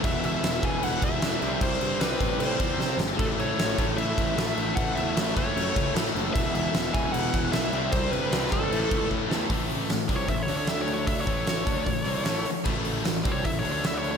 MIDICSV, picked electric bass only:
0, 0, Header, 1, 3, 480
1, 0, Start_track
1, 0, Tempo, 394477
1, 41, Time_signature, 4, 2, 24, 8
1, 17243, End_track
2, 0, Start_track
2, 0, Title_t, "Picked electric bass"
2, 0, Program_c, 0, 34
2, 54, Note_on_c, 0, 28, 97
2, 229, Note_off_c, 0, 28, 0
2, 285, Note_on_c, 0, 28, 88
2, 464, Note_off_c, 0, 28, 0
2, 527, Note_on_c, 0, 28, 95
2, 705, Note_off_c, 0, 28, 0
2, 768, Note_on_c, 0, 28, 86
2, 945, Note_off_c, 0, 28, 0
2, 1000, Note_on_c, 0, 28, 104
2, 1181, Note_off_c, 0, 28, 0
2, 1247, Note_on_c, 0, 28, 98
2, 1425, Note_off_c, 0, 28, 0
2, 1481, Note_on_c, 0, 28, 95
2, 1662, Note_off_c, 0, 28, 0
2, 1717, Note_on_c, 0, 36, 81
2, 1899, Note_off_c, 0, 36, 0
2, 1961, Note_on_c, 0, 36, 93
2, 2142, Note_off_c, 0, 36, 0
2, 2201, Note_on_c, 0, 43, 95
2, 2381, Note_off_c, 0, 43, 0
2, 2434, Note_on_c, 0, 36, 99
2, 2617, Note_off_c, 0, 36, 0
2, 2686, Note_on_c, 0, 33, 86
2, 2864, Note_off_c, 0, 33, 0
2, 2909, Note_on_c, 0, 45, 94
2, 3094, Note_off_c, 0, 45, 0
2, 3162, Note_on_c, 0, 40, 103
2, 3342, Note_off_c, 0, 40, 0
2, 3385, Note_on_c, 0, 48, 98
2, 3571, Note_off_c, 0, 48, 0
2, 3617, Note_on_c, 0, 31, 90
2, 3807, Note_off_c, 0, 31, 0
2, 3886, Note_on_c, 0, 33, 91
2, 4064, Note_off_c, 0, 33, 0
2, 4106, Note_on_c, 0, 33, 97
2, 4293, Note_off_c, 0, 33, 0
2, 4352, Note_on_c, 0, 33, 86
2, 4536, Note_off_c, 0, 33, 0
2, 4602, Note_on_c, 0, 33, 89
2, 4782, Note_off_c, 0, 33, 0
2, 4824, Note_on_c, 0, 33, 87
2, 5011, Note_off_c, 0, 33, 0
2, 5086, Note_on_c, 0, 33, 90
2, 5265, Note_off_c, 0, 33, 0
2, 5312, Note_on_c, 0, 33, 103
2, 5496, Note_off_c, 0, 33, 0
2, 5553, Note_on_c, 0, 33, 88
2, 5736, Note_off_c, 0, 33, 0
2, 5805, Note_on_c, 0, 33, 96
2, 5984, Note_off_c, 0, 33, 0
2, 6048, Note_on_c, 0, 40, 99
2, 6226, Note_off_c, 0, 40, 0
2, 6288, Note_on_c, 0, 33, 97
2, 6466, Note_off_c, 0, 33, 0
2, 6527, Note_on_c, 0, 30, 94
2, 6705, Note_off_c, 0, 30, 0
2, 6766, Note_on_c, 0, 42, 107
2, 6945, Note_off_c, 0, 42, 0
2, 7012, Note_on_c, 0, 37, 91
2, 7188, Note_off_c, 0, 37, 0
2, 7240, Note_on_c, 0, 45, 103
2, 7421, Note_off_c, 0, 45, 0
2, 7486, Note_on_c, 0, 30, 87
2, 7664, Note_off_c, 0, 30, 0
2, 7734, Note_on_c, 0, 28, 100
2, 7909, Note_off_c, 0, 28, 0
2, 7967, Note_on_c, 0, 28, 96
2, 8145, Note_off_c, 0, 28, 0
2, 8209, Note_on_c, 0, 28, 95
2, 8386, Note_off_c, 0, 28, 0
2, 8452, Note_on_c, 0, 28, 84
2, 8628, Note_off_c, 0, 28, 0
2, 8685, Note_on_c, 0, 28, 93
2, 8863, Note_off_c, 0, 28, 0
2, 8934, Note_on_c, 0, 28, 98
2, 9109, Note_off_c, 0, 28, 0
2, 9166, Note_on_c, 0, 35, 104
2, 9344, Note_off_c, 0, 35, 0
2, 9402, Note_on_c, 0, 36, 96
2, 9581, Note_off_c, 0, 36, 0
2, 9649, Note_on_c, 0, 36, 90
2, 9825, Note_off_c, 0, 36, 0
2, 9880, Note_on_c, 0, 43, 92
2, 10060, Note_off_c, 0, 43, 0
2, 10112, Note_on_c, 0, 36, 91
2, 10295, Note_off_c, 0, 36, 0
2, 10373, Note_on_c, 0, 32, 88
2, 10547, Note_off_c, 0, 32, 0
2, 10599, Note_on_c, 0, 33, 101
2, 10779, Note_off_c, 0, 33, 0
2, 10850, Note_on_c, 0, 37, 90
2, 11026, Note_off_c, 0, 37, 0
2, 11081, Note_on_c, 0, 45, 97
2, 11260, Note_off_c, 0, 45, 0
2, 11303, Note_on_c, 0, 40, 81
2, 11489, Note_off_c, 0, 40, 0
2, 11557, Note_on_c, 0, 33, 77
2, 12004, Note_off_c, 0, 33, 0
2, 12034, Note_on_c, 0, 33, 68
2, 12259, Note_off_c, 0, 33, 0
2, 12273, Note_on_c, 0, 36, 84
2, 12498, Note_off_c, 0, 36, 0
2, 12511, Note_on_c, 0, 33, 75
2, 12732, Note_off_c, 0, 33, 0
2, 12740, Note_on_c, 0, 38, 101
2, 13661, Note_off_c, 0, 38, 0
2, 13713, Note_on_c, 0, 33, 97
2, 14162, Note_off_c, 0, 33, 0
2, 14203, Note_on_c, 0, 38, 82
2, 14425, Note_off_c, 0, 38, 0
2, 14443, Note_on_c, 0, 33, 80
2, 14665, Note_off_c, 0, 33, 0
2, 14677, Note_on_c, 0, 36, 102
2, 14901, Note_off_c, 0, 36, 0
2, 14930, Note_on_c, 0, 33, 92
2, 15149, Note_off_c, 0, 33, 0
2, 15409, Note_on_c, 0, 33, 97
2, 15852, Note_off_c, 0, 33, 0
2, 15874, Note_on_c, 0, 33, 73
2, 16101, Note_off_c, 0, 33, 0
2, 16125, Note_on_c, 0, 36, 91
2, 16347, Note_off_c, 0, 36, 0
2, 16374, Note_on_c, 0, 33, 78
2, 16591, Note_off_c, 0, 33, 0
2, 16615, Note_on_c, 0, 38, 103
2, 17243, Note_off_c, 0, 38, 0
2, 17243, End_track
3, 0, Start_track
3, 0, Title_t, "Muted picked electric bass strokes"
3, 15173, Note_on_c, 9, 29, 39
3, 15294, Note_off_c, 9, 29, 0
3, 17243, End_track
0, 0, End_of_file